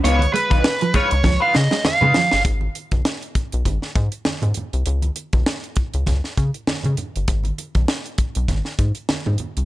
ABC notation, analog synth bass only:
X:1
M:4/4
L:1/16
Q:"Swing 16ths" 1/4=99
K:G#dor
V:1 name="Analog synth bass" clef=bass
C,,2 z B,,, z2 C,, C,, C,, z C, z2 C, z =G,,, | G,,,2 z B,,, z2 B,,, B,,, G,,, z G,, z2 G,, z ^B,,, | C,,2 z B,,, z2 C,, C,, C,, z C, z2 C, z =G,,, | G,,,2 z B,,, z2 B,,, B,,, G,,, z G,, z2 G,, z ^B,,, |]